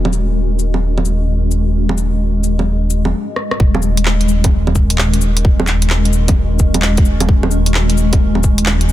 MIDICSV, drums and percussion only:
0, 0, Header, 1, 2, 480
1, 0, Start_track
1, 0, Key_signature, -6, "minor"
1, 0, Tempo, 461538
1, 1818, Time_signature, 4, 2, 24, 8
1, 9281, End_track
2, 0, Start_track
2, 0, Title_t, "Drums"
2, 53, Note_on_c, 9, 61, 56
2, 133, Note_on_c, 9, 69, 61
2, 157, Note_off_c, 9, 61, 0
2, 237, Note_off_c, 9, 69, 0
2, 614, Note_on_c, 9, 69, 56
2, 718, Note_off_c, 9, 69, 0
2, 770, Note_on_c, 9, 61, 31
2, 874, Note_off_c, 9, 61, 0
2, 1015, Note_on_c, 9, 61, 32
2, 1095, Note_on_c, 9, 69, 63
2, 1119, Note_off_c, 9, 61, 0
2, 1199, Note_off_c, 9, 69, 0
2, 1573, Note_on_c, 9, 69, 55
2, 1677, Note_off_c, 9, 69, 0
2, 1969, Note_on_c, 9, 61, 57
2, 2055, Note_on_c, 9, 69, 63
2, 2073, Note_off_c, 9, 61, 0
2, 2159, Note_off_c, 9, 69, 0
2, 2535, Note_on_c, 9, 69, 57
2, 2639, Note_off_c, 9, 69, 0
2, 2696, Note_on_c, 9, 61, 31
2, 2800, Note_off_c, 9, 61, 0
2, 3018, Note_on_c, 9, 69, 63
2, 3122, Note_off_c, 9, 69, 0
2, 3173, Note_on_c, 9, 61, 47
2, 3277, Note_off_c, 9, 61, 0
2, 3498, Note_on_c, 9, 37, 56
2, 3602, Note_off_c, 9, 37, 0
2, 3654, Note_on_c, 9, 37, 66
2, 3743, Note_on_c, 9, 36, 117
2, 3758, Note_off_c, 9, 37, 0
2, 3847, Note_off_c, 9, 36, 0
2, 3895, Note_on_c, 9, 61, 67
2, 3975, Note_on_c, 9, 69, 70
2, 3999, Note_off_c, 9, 61, 0
2, 4079, Note_off_c, 9, 69, 0
2, 4133, Note_on_c, 9, 42, 60
2, 4217, Note_on_c, 9, 39, 102
2, 4237, Note_off_c, 9, 42, 0
2, 4321, Note_off_c, 9, 39, 0
2, 4376, Note_on_c, 9, 42, 33
2, 4458, Note_on_c, 9, 69, 64
2, 4480, Note_off_c, 9, 42, 0
2, 4562, Note_off_c, 9, 69, 0
2, 4619, Note_on_c, 9, 42, 58
2, 4619, Note_on_c, 9, 61, 37
2, 4623, Note_on_c, 9, 36, 104
2, 4723, Note_off_c, 9, 42, 0
2, 4723, Note_off_c, 9, 61, 0
2, 4727, Note_off_c, 9, 36, 0
2, 4859, Note_on_c, 9, 61, 37
2, 4942, Note_on_c, 9, 69, 70
2, 4945, Note_on_c, 9, 36, 60
2, 4963, Note_off_c, 9, 61, 0
2, 5046, Note_off_c, 9, 69, 0
2, 5049, Note_off_c, 9, 36, 0
2, 5097, Note_on_c, 9, 42, 56
2, 5181, Note_on_c, 9, 39, 105
2, 5201, Note_off_c, 9, 42, 0
2, 5285, Note_off_c, 9, 39, 0
2, 5341, Note_on_c, 9, 42, 48
2, 5423, Note_on_c, 9, 69, 65
2, 5445, Note_off_c, 9, 42, 0
2, 5527, Note_off_c, 9, 69, 0
2, 5581, Note_on_c, 9, 42, 59
2, 5666, Note_on_c, 9, 36, 120
2, 5685, Note_off_c, 9, 42, 0
2, 5770, Note_off_c, 9, 36, 0
2, 5820, Note_on_c, 9, 61, 65
2, 5901, Note_on_c, 9, 39, 60
2, 5901, Note_on_c, 9, 69, 71
2, 5924, Note_off_c, 9, 61, 0
2, 6005, Note_off_c, 9, 39, 0
2, 6005, Note_off_c, 9, 69, 0
2, 6053, Note_on_c, 9, 42, 58
2, 6134, Note_on_c, 9, 39, 109
2, 6157, Note_off_c, 9, 42, 0
2, 6238, Note_off_c, 9, 39, 0
2, 6296, Note_on_c, 9, 42, 32
2, 6375, Note_on_c, 9, 69, 63
2, 6400, Note_off_c, 9, 42, 0
2, 6479, Note_off_c, 9, 69, 0
2, 6533, Note_on_c, 9, 42, 58
2, 6533, Note_on_c, 9, 61, 36
2, 6541, Note_on_c, 9, 36, 110
2, 6637, Note_off_c, 9, 42, 0
2, 6637, Note_off_c, 9, 61, 0
2, 6645, Note_off_c, 9, 36, 0
2, 6854, Note_on_c, 9, 69, 66
2, 6861, Note_on_c, 9, 36, 60
2, 6958, Note_off_c, 9, 69, 0
2, 6965, Note_off_c, 9, 36, 0
2, 7014, Note_on_c, 9, 42, 59
2, 7014, Note_on_c, 9, 61, 54
2, 7094, Note_on_c, 9, 39, 104
2, 7118, Note_off_c, 9, 42, 0
2, 7118, Note_off_c, 9, 61, 0
2, 7198, Note_off_c, 9, 39, 0
2, 7253, Note_on_c, 9, 42, 49
2, 7259, Note_on_c, 9, 36, 112
2, 7332, Note_on_c, 9, 69, 62
2, 7357, Note_off_c, 9, 42, 0
2, 7363, Note_off_c, 9, 36, 0
2, 7436, Note_off_c, 9, 69, 0
2, 7493, Note_on_c, 9, 42, 58
2, 7493, Note_on_c, 9, 61, 68
2, 7578, Note_on_c, 9, 36, 123
2, 7597, Note_off_c, 9, 42, 0
2, 7597, Note_off_c, 9, 61, 0
2, 7682, Note_off_c, 9, 36, 0
2, 7729, Note_on_c, 9, 61, 64
2, 7811, Note_on_c, 9, 69, 67
2, 7833, Note_off_c, 9, 61, 0
2, 7915, Note_off_c, 9, 69, 0
2, 7969, Note_on_c, 9, 42, 58
2, 8053, Note_on_c, 9, 39, 111
2, 8073, Note_off_c, 9, 42, 0
2, 8157, Note_off_c, 9, 39, 0
2, 8211, Note_on_c, 9, 42, 32
2, 8295, Note_on_c, 9, 69, 62
2, 8315, Note_off_c, 9, 42, 0
2, 8399, Note_off_c, 9, 69, 0
2, 8452, Note_on_c, 9, 42, 58
2, 8452, Note_on_c, 9, 61, 34
2, 8456, Note_on_c, 9, 36, 108
2, 8556, Note_off_c, 9, 42, 0
2, 8556, Note_off_c, 9, 61, 0
2, 8560, Note_off_c, 9, 36, 0
2, 8686, Note_on_c, 9, 61, 34
2, 8769, Note_on_c, 9, 69, 67
2, 8777, Note_on_c, 9, 36, 63
2, 8790, Note_off_c, 9, 61, 0
2, 8873, Note_off_c, 9, 69, 0
2, 8881, Note_off_c, 9, 36, 0
2, 8924, Note_on_c, 9, 42, 58
2, 9005, Note_on_c, 9, 39, 106
2, 9028, Note_off_c, 9, 42, 0
2, 9109, Note_off_c, 9, 39, 0
2, 9162, Note_on_c, 9, 42, 46
2, 9245, Note_on_c, 9, 69, 61
2, 9266, Note_off_c, 9, 42, 0
2, 9281, Note_off_c, 9, 69, 0
2, 9281, End_track
0, 0, End_of_file